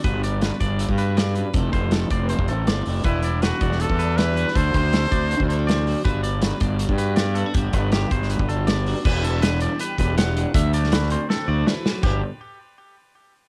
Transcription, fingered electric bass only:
X:1
M:4/4
L:1/16
Q:1/4=160
K:G
V:1 name="Fingered electric bass" clef=bass
G,,,6 G,,,3 G,,6- G,, | =F,,,2 F,,,4 F,,,3 F,,, A,,,2 G,,,2 F,,,2 | E,,,6 E,,,3 E,,6- E,, | D,,2 D,,4 D,,3 D,,6- D,, |
G,,,6 G,,,3 G,,6- G,, | G,,,2 G,,,4 G,,,3 G,,,6- G,,, | E,,,8 z2 E,,,6 | D,,8 z2 D,,2 z4 |
G,,,2 z12 z2 |]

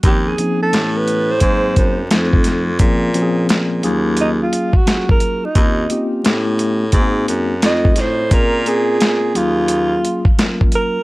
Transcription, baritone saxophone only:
X:1
M:4/4
L:1/8
Q:"Swing 16ths" 1/4=87
K:Ebdor
V:1 name="Baritone saxophone" clef=bass
E,, z =A,,2 _A,, G,, F,,2 | B,,2 B,, E,,2 z3 | E,, z =A,,2 _A,, G,, F,, =A,, | B,,2 B,, E,,2 z3 |]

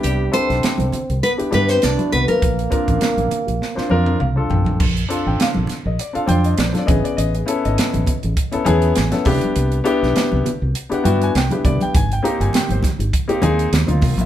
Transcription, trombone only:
X:1
M:4/4
L:1/16
Q:"Swing 16ths" 1/4=101
K:Cdor
V:1 name="Trombone"
G,2 C6 =B,2 B, C D2 B, _B,- | B,12 z4 | z16 | z16 |
z16 | z16 |]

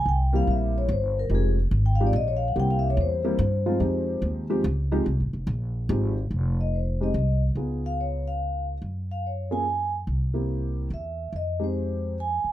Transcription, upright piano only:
X:1
M:3/4
L:1/8
Q:"Swing" 1/4=144
K:Fm
V:1 name="Upright piano"
z [G,B,C=EG]3 z2 | [F,A,CEG] z2 [F,A,CEG] z2 | [G,B,C=EG]3 [G,B,CEG] z [F,A,C_EF] | [F,A,CEG]3 [F,A,CEG] z [F,A,CEG] |
z4 [F,A,CEG] z | z3 [A,CEG] z2 | [_CEFA]4- [CEFA] z | z3 [B,DFA] z2 |
z [B,C=EG]3 z2 | z [A,CEG]3 z2 |]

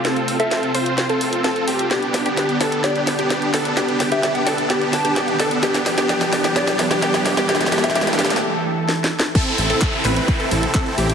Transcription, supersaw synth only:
X:1
M:4/4
L:1/16
Q:1/4=129
K:Am
V:1 name="Supersaw synth"
[CFA]3 [CFA]3 [CFc]3 [CFA]3 [CFA]2 [CFG]2 | [B,DG]3 [B,DG]3 [B,DA]2 [B,DG]3 [B,DG]3 [B,DA]2 | [B,DG]3 [B,DG]3 [B,DA]2 [B,DG]3 [B,DG]3 [B,DA]2 | [B,DG]3 [B,DG] [B,DG]3 [B,DG] [B,DG]3 [B,DG] [B,DG]3 [B,DG] |
[B,DG]2 [B,DG]2 [B,DG]2 [B,DG]2 z8 | [CEA]3 [CEA]3 [CEB]3 [CEA]3 [CEA]2 [CEG]2 |]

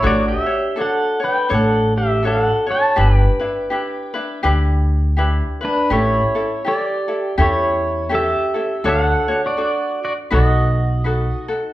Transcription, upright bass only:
X:1
M:4/4
L:1/8
Q:"Swing" 1/4=82
K:D
V:1 name="Upright bass" clef=bass
A,,, z3 A,,,4 | G,,, z3 D,,4 | A,,, z3 E,,4 | D,, z3 B,,,4 |]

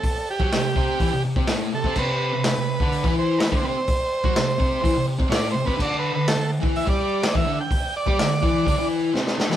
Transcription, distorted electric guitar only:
X:1
M:4/4
L:1/16
Q:1/4=125
K:Clyd
V:1 name="Distorted electric guitar" clef=bass
z3 [F,F] C,2 [C,C]2 [E,E] C, C, [C,C] [A,,A,]2 C, [C,C] | [C,C]3 C,2 C,2 [D,D]2 [E,E]3 z [D,D] [C,C] z | z3 [F,F] C,2 [C,C]2 [E,E] C, C, [C,C] [A,,A,]2 C, [C,C] | [D,D]3 D,2 D,2 [E,E]2 [G,G]3 z [E,E] [D,D] z |
z3 [G,G] D,2 [E,E]2 [D,D] [E,E]3 [C,C]2 [D,D] [E,E] |]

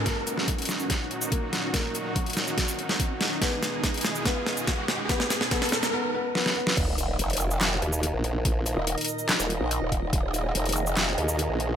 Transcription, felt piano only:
X:1
M:4/4
L:1/8
Q:1/4=143
K:Ebm
V:1 name="Felt piano"
[B,B]3 z3 [B,B] z | [B,B] z [G,G]6 | [Cc]3 z [Cc]3 z | [Cc]2 [Cc]2 [Cc] [Cc] [Cc] [Cc] |
z8 | z8 | z8 |]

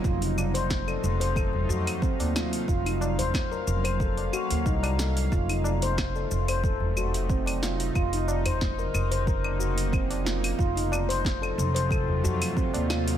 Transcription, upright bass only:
X:1
M:4/4
L:1/16
Q:1/4=91
K:none
V:1 name="Upright bass" clef=bass
F,,,6 F,,,4 F,,3 _E,,3 | F,,,4 z2 F,,,4 z _E,, C,,4 | F,,,6 F,,,8- F,,,2 | F,,,6 F,,,8- F,,,2 |
F,,,6 F,,,4 F,,3 _E,,3 |]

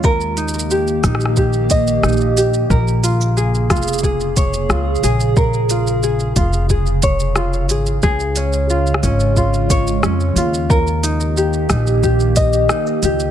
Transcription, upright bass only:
X:1
M:4/4
L:1/8
Q:1/4=90
K:Bbdor
V:1 name="Upright bass" clef=bass
E,,3 B,,,3 B,,,2 | B,,,3 F,,,3 D,, B,,,- | B,,,3 F,,,4 A,,, | D,,3 A,,,3 F,, E,,- |
E,,3 B,,,3 z D,, |]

